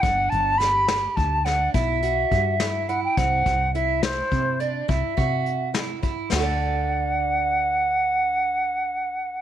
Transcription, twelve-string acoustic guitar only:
\new Staff \with { instrumentName = "Twelve-string acoustic guitar" } { \time 11/8 \key d \major \tempo 4 = 105 d'4 g'8 g'4 d'8 e'8 fis'4 e'8 e'8 | c'4 e'8 r4 d'8 e'8 fis'4 e'8 e'8 | <d' fis' a' d''>1~ <d' fis' a' d''>4. | }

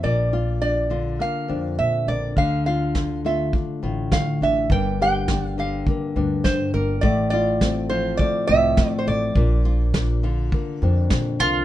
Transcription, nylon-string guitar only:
\new Staff \with { instrumentName = "Nylon-string guitar" } { \time 4/4 \key bes \lydian \tempo 4 = 103 << { bes8 f'8 d'8 f'8 bes8 d'4 bes8 | d'8 f'8 f'8 f'8 d'8 f'4 d'8 | bes8 g'8 d'8 g'8 bes8 d'4 bes8 | a8 f'8 c'8 f'8 a8 c'4 a8 |
bes8 f'8 d'8 f'8 bes8 d'4 bes8 | } \\ { bes,4. d4 f,4. | d4. a4 a,4. | g,4. d4 g,4. | a,4. f4 a,4. |
bes,4. d4 f,4. | } >> }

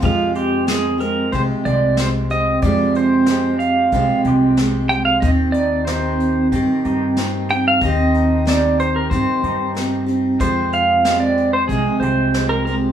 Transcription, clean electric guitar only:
\new Staff \with { instrumentName = "Clean electric guitar" } { \time 4/4 \key f \minor \tempo 4 = 93 f8 c'8 <aes c'>4 aes8 <aes c' g'>4. | f8 c'8 <aes c' g'>4 aes8 <aes c' g'>4. | c'8 ees'8 <c' ees' g'>4 c'8 <c' ees' g'>4. | c'8 ees'8 <c' ees' g'>4 c'8 <c' ees' g'>4. |
f8 c'8 <aes c'>4 aes8 <aes c' g'>4. | }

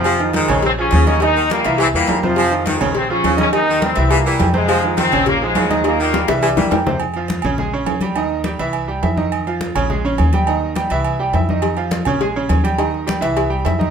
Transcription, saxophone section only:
\new Staff \with { instrumentName = "Saxophone section" } { \clef bass \time 4/4 \key bes \dorian \tempo 4 = 207 f4 ees2 des4~ | des8 ees4. e8 e4. | f4 ees2 des4~ | des8 ees4. e8 e4. |
f4 ees2 des4~ | des8 ees4. e8 e4. | r1 | r1 |
r1 | r1 | r1 | r1 | }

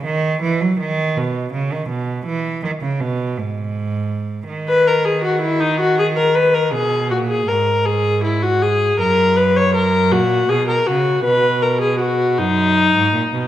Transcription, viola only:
\new Staff \with { instrumentName = "Viola" } { \time 12/8 \key b \mixolydian \tempo 4. = 53 r1. | r16 b'16 ais'16 gis'16 fis'16 e'16 dis'16 fis'16 gis'16 ais'16 b'16 ais'16 gis'8 fis'16 gis'16 ais'8 gis'8 e'16 fis'16 gis'8 | ais'8 b'16 cis''16 ais'8 fis'8 gis'16 ais'16 fis'8 b'8 ais'16 gis'16 fis'8 dis'4. | }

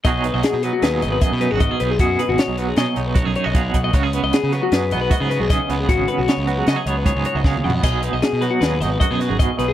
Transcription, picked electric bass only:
\new Staff \with { instrumentName = "Picked electric bass" } { \clef bass \time 5/4 \key b \major \tempo 4 = 154 b,,8. b,,16 r16 b,8 r16 dis,8 gis,,8 r16 b,8 gis,,8 r16 b,,8 | fis,8 r16 gis,,16 r16 b,,8. b,16 r16 b,,8. b,,16 r16 b,,8. b,,8 | cis,8. cis,16 r16 cis8 r16 fis,8 b,,8 r16 cis8 b,,8 r16 cis,8 | gis,,8 r16 b,,16 r16 cis,8. cis16 r16 cis,8. cis,16 r16 cis,8. eis,8 |
b,,8. b,,16 r16 b,8 r16 dis,8 gis,,8 r16 b,8 gis,,8 r16 b,,8 | }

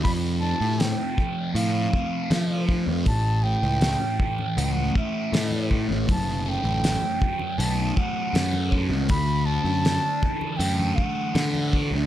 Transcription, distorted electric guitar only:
\new Staff \with { instrumentName = "Distorted electric guitar" } { \time 4/4 \key a \mixolydian \tempo 4 = 80 f8 a8 c'8 f8 a8 c'8 a8 c'8 | a,8 a8 cis'8 e8 a8 cis'8 a8 cis'8 | fis,8 a8 cis'8 fis8 a8 cis'8 a8 cis'8 | d8 a8 d'8 e8 a8 d'8 a8 d'8 | }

